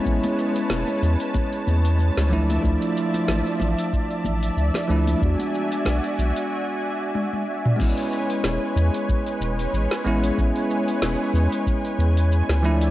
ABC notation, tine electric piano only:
X:1
M:4/4
L:1/8
Q:"Swing 16ths" 1/4=93
K:A
V:1 name="Tine electric piano"
[G,B,CE]6- [G,B,CE] [=F,A,DE] | [=F,A,DE]6- [F,A,DE] [F,A,DE] | [G,B,DF]4 z4 | [G,B,CE]6- [G,B,CE] [G,B,CE] |
[G,B,CE]6- [G,B,CE] [=F,A,DE] |]